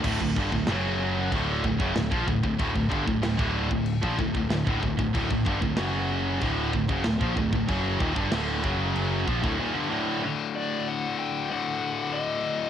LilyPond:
<<
  \new Staff \with { instrumentName = "Lead electric guitar" } { \time 4/4 \key d \major \tempo 4 = 94 r1 | r1 | r1 | r1 |
r8 d''8 fis''8 g''8 fis''4 ees''4 | }
  \new Staff \with { instrumentName = "Distorted electric guitar" } { \clef bass \time 4/4 \key d \major <d, a,>16 <d, a,>16 <g, d>16 <d, a,>16 <fis, cis fis>4 <d, a, d>8 <d, a,>16 <fis, cis>16 <d, a,>16 <bes, f>16 <d, a,>16 <d, a,>16 | <d, a,>16 <d, a,>16 <g, d>16 <d, a,>16 <d, a,>16 <d, a, d>8 <d, a,>8 <bes, f>16 <d, a,>16 <d, a,>16 <d, a,>16 <d, a,>16 <d, a,>16 <d, a,>16 | <d, a,>16 <d, a,>16 <g, d>16 <d, a,>16 <fis, cis fis>4 <d, a, d>8 <d, a,>16 <fis, cis>16 <d, a,>16 <bes, f>16 <d, a,>16 <d, a,>16 | <fis, cis fis>8 <ees, bes,>16 <g, d>16 <d, a, d>8 <fis, cis fis>4 <bes, f>16 <d, a,>16 <ees, bes,>16 <g, d>16 <d, a, d>8 |
<d, a, d>2 <d, a, d>2 | }
  \new Staff \with { instrumentName = "Distorted electric guitar" } { \clef bass \time 4/4 \key d \major <d, a,>16 <d, a,>16 <g, d>16 <d, a,>16 <fis, cis fis>4 <d, a, d>8 <d, a,>16 <fis, cis>16 <d, a,>16 <bes, f>16 <d, a,>16 <d, a,>16 | <d, a,>16 <d, a,>16 <g, d>16 <d, a,>16 <d, a,>16 <d, a, d>8 <d, a,>8 <bes, f>16 <d, a,>16 <d, a,>16 <d, a,>16 <d, a,>16 <d, a,>16 <d, a,>16 | <d, a,>16 <d, a,>16 <g, d>16 <d, a,>16 <fis, cis fis>4 <d, a, d>8 <d, a,>16 <fis, cis>16 <d, a,>16 <bes, f>16 <d, a,>16 <d, a,>16 | <fis, cis fis>8 <ees, bes,>16 <g, d>16 <d, a, d>8 <fis, cis fis>4 <bes, f>16 <d, a,>16 <ees, bes,>16 <g, d>16 <d, a, d>8 |
r1 | }
  \new Staff \with { instrumentName = "Distorted electric guitar" } { \clef bass \time 4/4 \key d \major <d, a,>16 <d, a,>16 <g, d>16 <d, a,>16 <fis, cis fis>4 <d, a, d>8 <d, a,>16 <fis, cis>16 <d, a,>16 <bes, f>16 <d, a,>16 <d, a,>16 | <d, a,>16 <d, a,>16 <g, d>16 <d, a,>16 <d, a,>16 <d, a, d>8 <d, a,>8 <bes, f>16 <d, a,>16 <d, a,>16 <d, a,>16 <d, a,>16 <d, a,>16 <d, a,>16 | <d, a,>16 <d, a,>16 <g, d>16 <d, a,>16 <fis, cis fis>4 <d, a, d>8 <d, a,>16 <fis, cis>16 <d, a,>16 <bes, f>16 <d, a,>16 <d, a,>16 | <fis, cis fis>8 <ees, bes,>16 <g, d>16 <d, a, d>8 <fis, cis fis>4 <bes, f>16 <d, a,>16 <ees, bes,>16 <g, d>16 <d, a, d>8 |
r1 | }
  \new Staff \with { instrumentName = "Picked electric bass" } { \clef bass \time 4/4 \key d \major d,,16 d,,16 g,,16 d,,16 fis,,4 d,,8 d,,16 fis,,16 d,,16 bes,,16 d,,16 d,,16 | d,,16 d,,16 g,,16 d,,16 d,,16 d,,8 d,,8 bes,,16 d,,16 d,,16 d,,16 d,,16 d,,16 d,,16 | d,,16 d,,16 g,,16 d,,16 fis,,4 d,,8 d,,16 fis,,16 d,,16 bes,,16 d,,16 d,,16 | fis,,8 ees,,16 g,,16 d,,8 fis,,4 bes,,16 d,,16 r4 |
r1 | }
  \new DrumStaff \with { instrumentName = "Drums" } \drummode { \time 4/4 <cymc bd>16 bd16 bd16 bd16 <cymc sn>4 <cymc bd>8 bd16 bd16 <cymc sn>16 bd16 bd16 bd16 | <cymc bd>16 bd16 bd16 bd16 <cymc sn>16 bd8 bd16 cymc16 bd16 bd16 bd16 <cymc sn>16 bd16 bd16 bd16 | <cymc bd>16 bd16 bd16 bd16 <cymc sn>4 <cymc bd>8 bd16 bd16 <cymc sn>16 bd16 bd16 bd16 | <cymc bd>8 bd16 bd16 <cymc sn>8 bd8 cymc8 bd16 bd16 r4 |
r4 r4 r4 r4 | }
>>